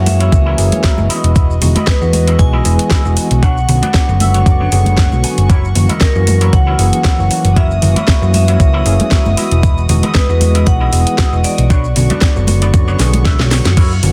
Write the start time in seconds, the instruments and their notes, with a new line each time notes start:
Already playing: picked electric bass F#2, tine electric piano E3 F#3 A#3 C#4 F#4, string section E3 A#3 G#4 C#5
0.00 vibraphone F#5
0.06 vibraphone E5, open hi-hat, high conga, maracas
0.20 clean electric guitar E4 F#4 A#4 C#5, closed hi-hat, maracas
0.32 picked electric bass C#2, tine electric piano E3 F#3 A#3 C#4 F#4, kick, closed hi-hat, maracas
0.46 clean electric guitar E4 F#4 A#4 C#5
0.57 picked electric bass F#1, tine electric piano E3 F#3 A#3 C#4 G#4, open hi-hat, maracas
0.72 closed hi-hat, high conga, maracas
0.84 clean electric guitar E4 F#4 A#4 C#5, kick, snare, closed hi-hat, maracas
0.97 picked electric bass F#1, tine electric piano E3 G#3 B3 F#4 D#5, high conga, maracas
1.09 string section G#3 F#4 D#5, clean electric guitar E4 F#4 G#4 D#5, open hi-hat, maracas
1.23 picked electric bass E1, closed hi-hat, maracas
1.35 kick, closed hi-hat, maracas
1.51 maracas
1.61 picked electric bass E1, tine electric piano E3 G#3 B3 D#4 F#4, muted clean electric guitar stroke, open hi-hat, low conga, maracas
1.75 clean electric guitar E4 F#4 G#4 D#5, closed hi-hat, high conga, maracas
1.87 vibraphone B4, kick, snare, closed hi-hat, maracas
2.01 picked electric bass E2, tine electric piano E3 G#3 B3 F#4 D#5, maracas
2.13 open hi-hat, high conga, maracas
2.27 clean electric guitar E4 F#4 G#4 D#5, closed hi-hat, maracas
2.39 picked electric bass B1, tine electric piano E3 G#3 B3 D#4 F#4, vibraphone G#5, kick, closed hi-hat, maracas
2.53 clean electric guitar E4 F#4 G#4 D#5
2.65 picked electric bass E1, tine electric piano E3 G#3 B3 G#4 D#5, open hi-hat, maracas
2.79 closed hi-hat, maracas
2.91 clean electric guitar E4 F#4 G#4 D#5, kick, snare, closed hi-hat, maracas
3.05 picked electric bass E1, tine electric piano E3 G#3 B3 F#4 D#5, maracas
3.17 muted clean electric guitar stroke, muted picked electric bass stroke, open hi-hat, maracas
3.30 picked electric bass B1, muted clean electric guitar stroke, closed hi-hat, maracas
3.42 string section D3 B3 C#6, clean electric guitar D4 F#4 B4 C#5, vibraphone F#5, kick, closed hi-hat, maracas
3.57 maracas
3.68 picked electric bass B1, tine electric piano D3 F#3 B3 C#4 F#4, muted clean electric guitar stroke, open hi-hat, low conga, maracas
3.82 clean electric guitar D4 F#4 B4 D5, closed hi-hat, high conga, maracas
3.94 kick, snare, closed hi-hat, maracas
4.08 picked electric bass F#1, tine electric piano D3 F#3 B3 F#4, maracas
4.20 clean electric guitar E5, vibraphone F#5, open hi-hat, high conga, maracas
4.34 clean electric guitar D4 F#4 B4 C#5, closed hi-hat, maracas
4.46 picked electric bass F#1, tine electric piano D3 F#3 B3 C#4 F#4, clean electric guitar D5, kick, closed hi-hat, maracas
4.60 clean electric guitar D4 F#4 B4 C#5
4.72 picked electric bass F#1, tine electric piano D3 F#3 B3 G#4, open hi-hat, maracas
4.86 closed hi-hat, high conga, maracas
4.97 clean electric guitar D4 F#4 B4 C#5 F#5, kick, snare, closed hi-hat, maracas
5.12 picked electric bass B1, tine electric piano D3 F#3 B3 F#4, high conga, maracas
5.23 clean electric guitar G#5, muted clean electric guitar stroke, muted picked electric bass stroke, open hi-hat, maracas
5.38 picked electric bass F#1, muted clean electric guitar stroke, closed hi-hat, maracas
5.49 string section E3 A#3, clean electric guitar E4 F#4 A#4 C#5, kick, closed hi-hat, maracas
5.65 maracas
5.75 picked electric bass F#1, tine electric piano E3 F#3 A#3 C#4 F#4, muted clean electric guitar stroke, open hi-hat, low conga, maracas
5.89 clean electric guitar E4 F#4 A#4 D#5, closed hi-hat, high conga, maracas
6.01 vibraphone A#4, kick, snare, closed hi-hat, maracas
6.15 picked electric bass F#2, tine electric piano E3 F#3 A#3 C#4 F#4, maracas
6.27 open hi-hat, high conga, maracas
6.41 clean electric guitar E4 F#4 A#4 C#5, closed hi-hat, maracas
6.53 picked electric bass C#2, tine electric piano E3 F#3 A#3 C#4 F#4, vibraphone F#5, kick, closed hi-hat, maracas
6.67 clean electric guitar E4 F#4 A#4 C#5
6.79 picked electric bass F#1, tine electric piano E3 F#3 A#3 C#4 G#4, open hi-hat, maracas
6.93 closed hi-hat, maracas
7.04 clean electric guitar E4 F#4 A#4 C#5, kick, snare, closed hi-hat, maracas
7.18 picked electric bass F#1, tine electric piano E3 F#3 A#3 C#4 F#4, maracas
7.30 muted clean electric guitar stroke, muted picked electric bass stroke, open hi-hat, maracas
7.45 picked electric bass F#1, muted clean electric guitar stroke, closed hi-hat, maracas
7.56 clean electric guitar E4 F#4 A#4 C#5, vibraphone E5, string section D#6, kick, closed hi-hat, maracas
7.71 maracas
7.82 picked electric bass F#1, tine electric piano E3 F#3 A#3 C#4 F#4, muted clean electric guitar stroke, open hi-hat, low conga, maracas
7.96 clean electric guitar E4 F#4 A#4 C#5, closed hi-hat, high conga, maracas
8.08 kick, snare, closed hi-hat, maracas
8.22 picked electric bass F#2, tine electric piano E3 F#3 A#3 C#4 F#4, maracas
8.34 vibraphone E5, open hi-hat, high conga, maracas
8.47 clean electric guitar E4 F#4 A#4 C#5, closed hi-hat, maracas
8.59 picked electric bass C#2, tine electric piano E3 F#3 A#3 C#4 F#4, kick, closed hi-hat, maracas
8.73 clean electric guitar E4 F#4 A#4 C#5
8.85 picked electric bass F#1, tine electric piano E3 F#3 A#3 C#4 G#4, open hi-hat, maracas
9.00 closed hi-hat, high conga, maracas
9.11 clean electric guitar E4 F#4 A#4 C#5, kick, snare, closed hi-hat, maracas
9.25 picked electric bass F#1, tine electric piano E3 G#3 B3 F#4 D#5, high conga, maracas
9.37 string section G#3, clean electric guitar E4 F#4 G#4 D#5, muted picked electric bass stroke, open hi-hat, maracas
9.51 picked electric bass E1, closed hi-hat, maracas
9.63 kick, closed hi-hat, maracas
9.78 maracas
9.89 picked electric bass E1, tine electric piano E3 G#3 B3 D#4 F#4, muted clean electric guitar stroke, open hi-hat, low conga, maracas
10.03 clean electric guitar E4 F#4 G#4 D#5, closed hi-hat, high conga, maracas
10.15 vibraphone B4, kick, snare, closed hi-hat, maracas
10.29 picked electric bass E2, tine electric piano E3 G#3 B3 F#4 D#5, maracas
10.41 open hi-hat, high conga, maracas
10.54 clean electric guitar E4 F#4 G#4 D#5, closed hi-hat, maracas
10.66 picked electric bass B1, tine electric piano E3 G#3 B3 D#4 F#4, vibraphone F#5, kick, closed hi-hat, maracas
10.80 clean electric guitar E4 F#4 G#4 D#5
10.92 picked electric bass E1, tine electric piano E3 G#3 B3 G#4 D#5, open hi-hat, maracas
11.07 closed hi-hat, maracas
11.18 clean electric guitar E4 F#4 G#4 D#5, kick, snare, closed hi-hat, maracas
11.32 picked electric bass E1, tine electric piano E3 G#3 B3 F#4 D#5, maracas
11.44 vibraphone D5, muted clean electric guitar stroke, muted picked electric bass stroke, open hi-hat, maracas
11.58 picked electric bass B1, muted clean electric guitar stroke, closed hi-hat, maracas
11.70 string section D3 B3 C#6, clean electric guitar D4 F#4 B4 C#5, kick, closed hi-hat, maracas
11.84 maracas
11.96 picked electric bass B1, tine electric piano D3 F#3 B3 C#4 F#4, muted clean electric guitar stroke, open hi-hat, low conga, maracas
12.10 clean electric guitar D4 F#4 B4 D5, closed hi-hat, high conga, maracas
12.21 kick, snare, closed hi-hat, maracas
12.36 picked electric bass F#1, tine electric piano D3 F#3 B3 F#4, maracas
12.47 open hi-hat, high conga, maracas
12.62 clean electric guitar D4 F#4 B4 D5, closed hi-hat, maracas
12.73 picked electric bass F#1, tine electric piano D3 F#3 B3 C#4 F#4, kick, closed hi-hat, maracas
12.88 clean electric guitar D4 F#4 B4 C#5, maracas
12.99 picked electric bass B1, tine electric piano D3 F#3 B3 G#4, snare, open hi-hat, maracas
13.13 closed hi-hat, high conga, maracas
13.25 clean electric guitar D4 F#4 B4 E5, kick, snare, closed hi-hat, maracas
13.39 picked electric bass B1, tine electric piano D3 F#3 B3 F#4 C#5, snare, high conga, maracas
13.51 muted clean electric guitar stroke, snare, open hi-hat, maracas
13.64 picked electric bass F#2, muted clean electric guitar stroke, snare, closed hi-hat, maracas
13.77 string section A#3 E4 F#4, clean electric guitar E4 F#4 A#4 C#5, kick, closed hi-hat, crash, maracas
13.92 maracas
14.03 picked electric bass F#1, tine electric piano E3 F#3 A#3 C#4 F#4, muted clean electric guitar stroke, open hi-hat, low conga, maracas